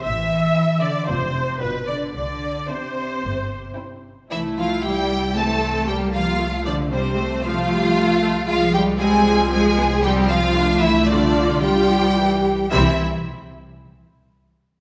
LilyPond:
<<
  \new Staff \with { instrumentName = "Violin section" } { \time 4/4 \key c \major \tempo 4 = 114 e''4. d''8 c''4 b'8 d''8 | d''4 c''2 r4 | e''8 f''8 g''4 a''4 g''8 f''8~ | f''8 d''8 c''4 f''2 |
f''8 g''8 aes''4 aes''4 g''8 f''8~ | f''8 e''8 d''4 g''2 | e''8 r2. r8 | }
  \new Staff \with { instrumentName = "Violin section" } { \time 4/4 \key c \major r4 <c' e'>4 <d' f'>4 <d' f'>4 | r4 <c' e'>4 r4 <c' e'>4 | e'8 f'8 g'4 a'4 g'8 f'8~ | f'8 d'8 c'4 f'2 |
f'8 g'8 aes'4 aes'4 g'8 f'8~ | f'8 e'8 d'4 g'2 | e'8 r2. r8 | }
  \new Staff \with { instrumentName = "Viola section" } { \time 4/4 \key c \major << { e''4. d''8 c''4 b'8 d''8 | d''4 c''2 r4 | e'2 c'4 bes4 | a2 a2 |
aes4 c'4 c'8 b8 c'4 | d'8 e'8 f'2 g'8 r8 | c'8 r2. r8 | } \\ { r1 | r1 | a4 g4 e4 g4 | a8 f8 g8 a8 f8 g8 a8 a8 |
aes4 g8 f4. f4 | a2 g8 f8 e8 r8 | g8 r2. r8 | } >> }
  \new Staff \with { instrumentName = "Cello section" } { \clef bass \time 4/4 \key c \major e4. d8 c4 b,8 d8 | d4 c2 r4 | e8 f8 g4 a4 g8 f8~ | f8 d8 c4 f2 |
f8 g8 aes4 aes4 g8 f8~ | f8 e8 d4 g2 | e8 r2. r8 | }
  \new Staff \with { instrumentName = "Double bass section" } { \clef bass \time 4/4 \key c \major a,,4 r4 f,,4 g,,4 | c,4 r4 g,,4 r4 | c,1~ | c,1 |
c,1~ | c,2.~ c,8 r8 | c,8 r2. r8 | }
>>